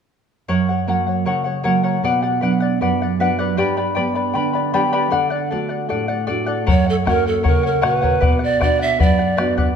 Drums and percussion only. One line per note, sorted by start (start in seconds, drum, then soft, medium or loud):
6.68 bombo low medium
7.07 bombo rim soft
7.07 bombo low soft
7.45 bombo low medium
7.83 bombo rim medium
8.04 bombo low soft
8.22 bombo low medium
8.62 bombo rim soft
8.62 bombo low soft
9.00 bombo low medium
9.38 bombo rim medium
9.58 bombo low soft